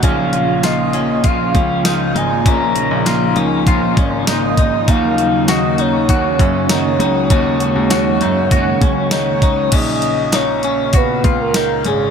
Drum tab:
CC |--------|--------|--------|--------|
HH |xxxxxxxx|xxxxxxxx|xxxxxxxx|xxxxxxxx|
TB |--x---x-|--x---x-|--x---x-|--x---x-|
SD |--o---o-|--o---o-|--o---o-|--o---o-|
BD |o---oo--|o---oo-o|o---oo--|o---oo-o|

CC |x-------|
HH |xxxxxxxx|
TB |--x---x-|
SD |--o---o-|
BD |o---oo--|